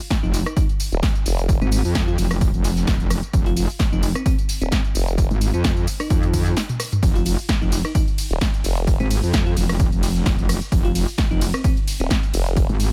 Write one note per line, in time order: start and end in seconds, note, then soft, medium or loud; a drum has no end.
0.01 tambourine soft
0.10 kick loud
0.10 snare loud
0.10 closed hi-hat medium
0.10 tambourine soft
0.23 0.44 F1 loud
0.23 0.39 D#4 medium
0.23 tambourine soft
0.33 closed hi-hat medium
0.33 open hi-hat loud
0.33 tambourine medium
0.46 0.53 D#4 medium
0.46 cross-stick medium
0.46 closed hi-hat soft
0.46 tambourine soft
0.56 0.65 D#4 medium
0.56 kick loud
0.56 closed hi-hat medium
0.56 tambourine soft
0.69 closed hi-hat soft
0.69 tambourine soft
0.80 closed hi-hat medium
0.80 open hi-hat loud
0.80 tambourine medium
0.92 1.01 D#1 loud
0.92 closed hi-hat soft
0.92 tambourine soft
1.03 kick loud
1.03 snare loud
1.03 closed hi-hat medium
1.03 tambourine soft
1.15 closed hi-hat soft
1.15 tambourine soft
1.26 1.60 F1 medium
1.26 closed hi-hat medium
1.26 open hi-hat loud
1.26 tambourine medium
1.39 closed hi-hat medium
1.39 closed hi-hat soft
1.39 tambourine soft
1.49 kick loud
1.49 closed hi-hat medium
1.49 tambourine soft
1.62 1.83 G#1 loud
1.62 1.68 C4 medium
1.62 closed hi-hat soft
1.62 tambourine soft
1.71 1.80 C4 medium
1.71 closed hi-hat medium
1.71 open hi-hat loud
1.71 tambourine medium
1.85 2.17 F2 medium
1.85 tambourine soft
1.95 kick loud
1.95 snare loud
1.95 closed hi-hat medium
1.95 tambourine soft
2.08 2.14 F4 medium
2.08 tambourine soft
2.18 2.52 F1 loud
2.18 2.26 F4 medium
2.18 closed hi-hat medium
2.18 open hi-hat loud
2.18 tambourine medium
2.31 cross-stick medium
2.31 open hi-hat medium
2.31 tambourine soft
2.41 kick loud
2.41 closed hi-hat medium
2.41 tambourine soft
2.54 2.86 F1 loud
2.54 closed hi-hat soft
2.54 tambourine soft
2.64 closed hi-hat medium
2.64 open hi-hat loud
2.64 tambourine medium
2.76 snare soft
2.76 closed hi-hat medium
2.76 tambourine soft
2.87 2.98 F1 loud
2.87 kick loud
2.87 snare loud
2.87 closed hi-hat loud
2.87 closed hi-hat medium
2.87 tambourine soft
3.00 3.21 F1 loud
3.00 closed hi-hat soft
3.00 tambourine soft
3.10 cross-stick medium
3.10 closed hi-hat medium
3.10 open hi-hat loud
3.10 tambourine medium
3.23 closed hi-hat medium
3.23 tambourine soft
3.33 3.67 F1 loud
3.33 kick loud
3.33 closed hi-hat medium
3.33 tambourine soft
3.46 3.53 F4 loud
3.46 closed hi-hat soft
3.46 tambourine soft
3.57 3.65 F4 medium
3.57 closed hi-hat medium
3.57 open hi-hat loud
3.57 tambourine medium
3.70 tambourine soft
3.79 kick loud
3.79 snare loud
3.79 closed hi-hat medium
3.79 tambourine soft
3.92 4.13 F1 loud
3.92 4.09 D#4 medium
3.92 tambourine soft
4.02 closed hi-hat medium
4.02 open hi-hat loud
4.02 tambourine medium
4.15 4.22 C4 medium
4.15 cross-stick medium
4.15 closed hi-hat soft
4.15 tambourine soft
4.25 4.34 C4 medium
4.25 kick loud
4.25 closed hi-hat medium
4.25 tambourine soft
4.38 closed hi-hat soft
4.38 tambourine soft
4.49 closed hi-hat medium
4.49 open hi-hat loud
4.49 tambourine medium
4.61 4.70 D#1 loud
4.61 4.68 C4 medium
4.61 closed hi-hat medium
4.61 tambourine soft
4.71 4.80 C4 medium
4.71 kick loud
4.71 snare loud
4.71 closed hi-hat loud
4.71 closed hi-hat medium
4.71 tambourine soft
4.85 closed hi-hat soft
4.85 tambourine soft
4.95 5.29 F1 loud
4.95 closed hi-hat medium
4.95 open hi-hat loud
4.95 tambourine medium
5.08 closed hi-hat medium
5.08 closed hi-hat soft
5.08 tambourine soft
5.18 kick loud
5.18 closed hi-hat medium
5.18 tambourine soft
5.31 5.52 G#1 loud
5.31 closed hi-hat soft
5.31 tambourine soft
5.41 closed hi-hat medium
5.41 open hi-hat loud
5.41 tambourine medium
5.54 5.86 F2 loud
5.54 5.70 C4 medium
5.54 closed hi-hat soft
5.54 tambourine soft
5.64 kick loud
5.64 snare loud
5.64 closed hi-hat medium
5.64 tambourine soft
5.77 closed hi-hat soft
5.77 tambourine soft
5.87 closed hi-hat medium
5.87 open hi-hat loud
5.87 tambourine medium
6.00 6.64 D#4 medium
6.00 cross-stick medium
6.00 open hi-hat medium
6.00 tambourine soft
6.10 6.55 F2 loud
6.10 kick loud
6.10 closed hi-hat medium
6.10 tambourine soft
6.23 closed hi-hat soft
6.23 tambourine soft
6.33 kick medium
6.33 closed hi-hat medium
6.33 open hi-hat loud
6.33 high tom medium
6.33 tambourine medium
6.46 snare soft
6.46 closed hi-hat medium
6.46 tambourine soft
6.57 snare loud
6.57 closed hi-hat medium
6.57 closed hi-hat loud
6.57 tambourine soft
6.69 closed hi-hat soft
6.69 mid tom medium
6.69 tambourine soft
6.80 cross-stick medium
6.80 closed hi-hat medium
6.80 open hi-hat loud
6.80 tambourine medium
6.92 closed hi-hat medium
6.92 mid tom medium
6.92 tambourine soft
7.03 7.36 F1 loud
7.03 kick loud
7.03 closed hi-hat medium
7.03 closed hi-hat loud
7.03 ride medium
7.03 tambourine soft
7.15 7.22 F4 medium
7.15 closed hi-hat soft
7.15 tambourine soft
7.25 7.34 F4 medium
7.25 closed hi-hat medium
7.25 open hi-hat loud
7.25 ride medium
7.25 tambourine medium
7.39 tambourine soft
7.49 kick loud
7.49 snare loud
7.49 closed hi-hat medium
7.49 ride medium
7.49 tambourine soft
7.61 7.83 F1 loud
7.61 7.78 D#4 medium
7.61 tambourine soft
7.72 closed hi-hat medium
7.72 open hi-hat loud
7.72 ride medium
7.72 tambourine medium
7.85 7.91 D#4 medium
7.85 cross-stick medium
7.85 closed hi-hat soft
7.85 tambourine soft
7.95 8.03 D#4 medium
7.95 kick loud
7.95 closed hi-hat medium
7.95 ride medium
7.95 tambourine soft
8.08 closed hi-hat soft
8.08 tambourine soft
8.18 closed hi-hat medium
8.18 open hi-hat loud
8.18 ride medium
8.18 tambourine medium
8.31 8.39 D#1 loud
8.31 closed hi-hat medium
8.31 tambourine soft
8.41 kick loud
8.41 snare loud
8.41 closed hi-hat medium
8.41 ride medium
8.41 tambourine soft
8.54 closed hi-hat soft
8.54 tambourine soft
8.64 8.98 F1 medium
8.64 closed hi-hat medium
8.64 open hi-hat loud
8.64 ride medium
8.64 tambourine medium
8.77 closed hi-hat medium
8.77 closed hi-hat soft
8.77 tambourine soft
8.87 kick loud
8.87 closed hi-hat medium
8.87 ride medium
8.87 tambourine soft
9.00 9.21 G#1 loud
9.00 9.07 C4 medium
9.00 closed hi-hat soft
9.00 tambourine soft
9.10 closed hi-hat medium
9.10 open hi-hat loud
9.10 ride medium
9.10 tambourine medium
9.23 9.55 F2 loud
9.23 tambourine soft
9.33 kick loud
9.33 snare loud
9.33 closed hi-hat medium
9.33 ride medium
9.33 tambourine soft
9.46 9.53 F4 loud
9.46 tambourine soft
9.57 9.90 F1 loud
9.57 9.65 F4 medium
9.57 closed hi-hat medium
9.57 open hi-hat loud
9.57 ride medium
9.57 tambourine medium
9.69 cross-stick medium
9.69 open hi-hat medium
9.69 tambourine soft
9.79 kick loud
9.79 closed hi-hat medium
9.79 ride medium
9.79 tambourine soft
9.92 10.24 F1 medium
9.92 closed hi-hat soft
9.92 tambourine soft
10.03 closed hi-hat medium
10.03 open hi-hat loud
10.03 ride medium
10.03 tambourine medium
10.15 snare soft
10.15 closed hi-hat medium
10.15 tambourine soft
10.26 10.36 F1 loud
10.26 kick loud
10.26 snare loud
10.26 closed hi-hat medium
10.26 ride medium
10.26 tambourine soft
10.39 10.60 F1 loud
10.39 closed hi-hat soft
10.39 tambourine soft
10.49 cross-stick medium
10.49 closed hi-hat medium
10.49 open hi-hat loud
10.49 ride medium
10.49 tambourine medium
10.62 closed hi-hat medium
10.62 tambourine soft
10.72 11.06 F1 loud
10.72 kick loud
10.72 closed hi-hat medium
10.72 closed hi-hat loud
10.72 ride medium
10.72 tambourine soft
10.84 10.91 F4 medium
10.84 closed hi-hat soft
10.84 tambourine soft
10.95 11.03 F4 medium
10.95 closed hi-hat medium
10.95 open hi-hat loud
10.95 ride medium
10.95 tambourine medium
11.08 tambourine soft
11.18 kick loud
11.18 snare loud
11.18 closed hi-hat medium
11.18 ride medium
11.18 tambourine soft
11.31 11.52 F1 loud
11.31 11.47 D#4 loud
11.31 tambourine soft
11.41 closed hi-hat medium
11.41 open hi-hat loud
11.41 ride medium
11.41 tambourine medium
11.54 11.60 C4 medium
11.54 cross-stick medium
11.54 closed hi-hat soft
11.54 tambourine soft
11.64 11.72 C4 medium
11.64 kick loud
11.64 closed hi-hat medium
11.64 ride medium
11.64 tambourine soft
11.77 closed hi-hat soft
11.77 tambourine soft
11.88 closed hi-hat medium
11.88 open hi-hat loud
11.88 ride medium
11.88 tambourine medium
12.00 12.09 D#1 loud
12.00 12.07 C4 medium
12.00 closed hi-hat medium
12.00 tambourine soft
12.10 12.18 C4 medium
12.10 kick loud
12.10 snare loud
12.10 closed hi-hat loud
12.10 closed hi-hat medium
12.10 ride medium
12.10 tambourine soft
12.23 closed hi-hat soft
12.23 tambourine soft
12.33 12.67 F1 loud
12.33 closed hi-hat medium
12.33 open hi-hat loud
12.33 ride medium
12.33 tambourine medium
12.46 closed hi-hat soft
12.46 closed hi-hat medium
12.46 tambourine soft
12.57 kick loud
12.57 closed hi-hat medium
12.57 ride medium
12.57 tambourine soft
12.69 12.90 G#1 loud
12.69 closed hi-hat soft
12.69 tambourine soft
12.80 closed hi-hat medium
12.80 open hi-hat loud
12.80 ride medium
12.80 tambourine medium